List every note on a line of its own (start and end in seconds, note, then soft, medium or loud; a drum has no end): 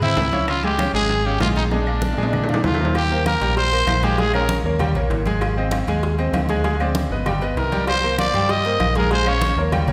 0.00 0.14 G#2 loud
0.00 0.27 C4 medium
0.00 0.45 E4 medium
0.00 0.28 C5 medium
0.00 0.28 E5 medium
0.00 high bongo soft
0.00 high conga soft
0.00 low conga medium
0.17 0.89 C#2 loud
0.17 high bongo medium
0.17 low bongo medium
0.17 high conga soft
0.17 high timbale medium
0.17 low timbale medium
0.32 0.58 C#4 medium
0.32 0.58 C#5 medium
0.32 0.58 F5 medium
0.32 high bongo soft
0.32 high conga medium
0.32 high timbale medium
0.48 0.63 F4 loud
0.48 high bongo medium
0.48 high conga soft
0.48 high timbale medium
0.48 claves medium
0.63 0.77 G#3 medium
0.63 0.93 G4 medium
0.63 0.77 G#4 medium
0.63 0.77 G#5 medium
0.63 high conga soft
0.63 high timbale medium
0.78 0.92 C#4 medium
0.78 0.92 C#5 medium
0.78 0.92 F5 medium
0.78 high bongo medium
0.78 high conga loud
0.78 high timbale medium
0.78 low timbale medium
0.78 claves medium
0.93 1.37 G#1 medium
0.93 1.20 G#3 medium
0.93 1.27 G#4 loud
0.93 1.20 G#4 medium
0.93 1.20 G#5 medium
0.93 high conga soft
1.09 high bongo medium
1.09 high conga soft
1.09 high timbale medium
1.25 1.39 C#4 medium
1.25 1.40 G4 medium
1.25 1.39 C#5 medium
1.25 1.39 F5 medium
1.25 high conga soft
1.40 2.12 A#1 medium
1.40 1.66 G#3 medium
1.40 1.48 F4 medium
1.40 1.67 G#4 medium
1.40 1.67 G#5 medium
1.40 high bongo medium
1.40 low bongo medium
1.40 high conga medium
1.40 high timbale medium
1.40 low timbale medium
1.40 claves medium
1.56 1.64 D#4 medium
1.56 high conga medium
1.56 high timbale medium
1.71 1.84 G#3 medium
1.71 2.60 D4 medium
1.71 1.85 G#4 medium
1.71 1.85 G#5 medium
1.71 high bongo medium
1.71 high conga soft
1.71 high timbale medium
1.86 2.12 D4 medium
1.86 2.13 D5 medium
1.86 2.13 F5 medium
1.86 high bongo soft
1.86 high conga soft
1.86 claves medium
2.02 high bongo medium
2.02 high conga medium
2.13 high timbale medium
2.17 2.60 A#2 medium
2.17 2.43 G#3 medium
2.17 2.43 G#4 medium
2.17 2.43 G#5 medium
2.17 high conga soft
2.23 high timbale loud
2.33 high bongo medium
2.33 high conga soft
2.33 low conga medium
2.33 claves medium
2.44 low timbale loud
2.49 2.74 D4 medium
2.49 2.74 D5 medium
2.49 2.75 F5 medium
2.49 high bongo soft
2.49 high conga soft
2.49 low conga medium
2.54 low timbale loud
2.64 3.35 D#2 medium
2.64 2.93 F4 medium
2.64 high bongo medium
2.64 low bongo medium
2.64 high conga soft
2.64 low timbale medium
2.74 low timbale loud
2.79 2.92 A#3 medium
2.79 2.93 A#4 medium
2.79 2.93 C5 medium
2.79 high bongo soft
2.85 low timbale loud
2.95 3.24 G4 loud
2.95 cowbell medium
2.95 high conga soft
2.95 low agogo loud
2.95 claves medium
3.11 3.36 A#3 medium
3.11 3.36 A#4 medium
3.11 3.36 C5 medium
3.11 high conga soft
3.26 3.55 A#4 medium
3.26 cowbell medium
3.26 high conga medium
3.26 low timbale medium
3.26 low agogo loud
3.26 claves medium
3.41 3.84 A#1 loud
3.41 3.67 G3 medium
3.41 3.67 G4 medium
3.41 3.67 G5 medium
3.41 cowbell medium
3.41 high conga soft
3.41 low agogo medium
3.57 4.05 C5 loud
3.57 cowbell loud
3.57 high conga soft
3.72 3.97 A#3 medium
3.72 3.98 A#4 medium
3.72 3.98 C5 medium
3.72 high conga soft
3.72 low agogo medium
3.87 4.59 A#1 medium
3.87 cowbell medium
3.87 high conga medium
3.87 low timbale medium
3.87 low agogo loud
3.87 claves medium
4.03 4.16 G#3 medium
4.03 4.21 G4 medium
4.03 4.16 G#4 loud
4.03 4.16 G#5 medium
4.03 cowbell medium
4.03 high conga medium
4.18 4.31 G#3 medium
4.18 4.34 G#4 loud
4.18 4.31 G#4 medium
4.18 4.32 G#5 medium
4.18 cowbell loud
4.18 high conga soft
4.18 low agogo medium
4.34 4.59 C#4 medium
4.34 4.63 A#4 loud
4.34 4.59 C#5 medium
4.34 4.60 F5 medium
4.34 high conga soft
4.34 low agogo loud
4.34 claves medium
4.49 cowbell medium
4.49 high conga loud
4.49 low timbale medium
4.64 4.93 D#2 medium
4.64 4.77 A#3 medium
4.64 4.78 A#4 medium
4.64 4.78 C#5 medium
4.64 high conga soft
4.79 4.92 G3 medium
4.79 4.93 G4 medium
4.79 4.93 G5 medium
4.79 cowbell loud
4.79 high conga soft
4.79 low conga medium
4.79 low agogo loud
4.79 claves medium
4.95 5.09 A#1 medium
4.95 5.21 A#3 medium
4.95 5.21 A#4 medium
4.95 5.21 C#5 medium
4.95 high conga soft
4.95 low conga medium
4.95 low agogo medium
5.10 5.81 G#1 loud
5.10 cowbell medium
5.10 high conga soft
5.10 low timbale medium
5.26 5.51 G#3 medium
5.26 5.52 G#4 loud
5.26 5.52 G#5 medium
5.26 cowbell medium
5.26 high conga medium
5.26 low agogo medium
5.41 cowbell loud
5.41 high conga soft
5.41 low agogo loud
5.41 claves medium
5.56 5.82 C4 medium
5.56 5.82 C5 medium
5.56 5.83 D#5 medium
5.56 high conga soft
5.71 cowbell medium
5.71 high conga loud
5.71 low timbale medium
5.71 low agogo loud
5.71 claves medium
5.87 6.30 D#2 loud
5.87 6.13 G#3 medium
5.87 6.13 G#4 medium
5.87 6.14 G#5 medium
5.87 cowbell medium
5.87 high conga soft
5.87 low agogo medium
6.03 cowbell loud
6.03 high conga soft
6.18 6.44 C4 medium
6.18 6.44 C5 medium
6.18 6.44 D#5 medium
6.18 high conga soft
6.18 low agogo medium
6.33 7.05 D2 loud
6.33 cowbell medium
6.33 high conga medium
6.33 low timbale medium
6.33 low agogo loud
6.33 claves medium
6.49 6.62 G#3 medium
6.49 6.62 G#4 medium
6.49 6.62 G#5 medium
6.49 cowbell medium
6.49 high conga medium
6.64 6.77 G#3 medium
6.64 6.77 G#4 medium
6.64 6.77 G#5 medium
6.64 cowbell loud
6.64 high conga soft
6.64 low agogo medium
6.80 7.06 C4 medium
6.80 7.06 C5 medium
6.80 7.06 D5 medium
6.80 high conga soft
6.80 low agogo loud
6.80 claves medium
6.95 cowbell medium
6.95 high conga loud
6.95 low timbale medium
7.10 7.53 G1 medium
7.10 7.24 B3 medium
7.10 7.24 B4 medium
7.10 7.24 D#5 medium
7.10 high conga soft
7.26 7.39 G3 medium
7.26 7.39 G4 medium
7.26 7.39 G5 medium
7.26 cowbell loud
7.26 high conga soft
7.26 low conga medium
7.26 low agogo loud
7.26 claves medium
7.41 7.67 B3 medium
7.41 7.67 B4 medium
7.41 7.67 D#5 medium
7.41 high conga soft
7.41 low agogo medium
7.56 8.28 C2 medium
7.56 7.86 A#4 medium
7.56 cowbell medium
7.56 high conga soft
7.56 low timbale medium
7.72 7.98 G3 medium
7.72 7.98 G4 medium
7.72 7.98 G5 medium
7.72 cowbell medium
7.72 high conga medium
7.72 low agogo medium
7.87 8.17 C5 loud
7.87 cowbell loud
7.87 high conga soft
7.87 low agogo loud
7.87 claves medium
8.03 8.29 A#3 medium
8.03 8.29 A#4 medium
8.03 8.29 C5 medium
8.03 high conga soft
8.18 8.52 D5 medium
8.18 cowbell medium
8.18 high conga medium
8.18 low timbale medium
8.18 low agogo loud
8.18 claves medium
8.33 8.77 G2 medium
8.33 8.59 G3 medium
8.33 8.60 G4 medium
8.33 8.60 G5 medium
8.33 cowbell medium
8.33 high conga soft
8.33 low agogo medium
8.49 8.96 D#5 loud
8.49 cowbell loud
8.49 high conga soft
8.65 8.90 A#3 medium
8.65 8.90 A#4 medium
8.65 8.91 C5 medium
8.65 high conga soft
8.65 low agogo medium
8.79 9.51 A#1 loud
8.79 cowbell medium
8.79 high conga medium
8.79 low timbale medium
8.79 low agogo loud
8.79 claves medium
8.95 9.09 G#3 medium
8.95 9.09 G#4 medium
8.95 9.11 A#4 medium
8.95 9.09 G#5 medium
8.95 cowbell medium
8.95 high conga medium
9.11 9.24 G#3 medium
9.11 9.24 G#4 medium
9.11 9.30 C5 loud
9.11 9.24 G#5 medium
9.11 cowbell loud
9.11 high conga soft
9.11 low agogo medium
9.26 9.52 C#4 medium
9.26 9.52 C#5 medium
9.26 9.58 C#5 medium
9.26 9.52 F5 medium
9.26 high conga soft
9.26 low agogo loud
9.26 claves medium
9.41 cowbell medium
9.41 high conga loud
9.41 low timbale medium
9.56 9.85 D#2 medium
9.56 9.70 A#3 medium
9.56 9.70 A#4 medium
9.56 9.71 C#5 medium
9.56 high conga soft
9.72 9.85 G3 medium
9.72 9.85 G4 medium
9.72 9.86 G5 medium
9.72 cowbell loud
9.72 high conga soft
9.72 low conga medium
9.72 low agogo loud
9.72 claves medium
9.87 9.93 A#1 medium
9.87 9.93 A#3 medium
9.87 9.93 A#4 medium
9.87 9.93 C#5 medium
9.87 high conga soft
9.87 low conga medium
9.87 low agogo medium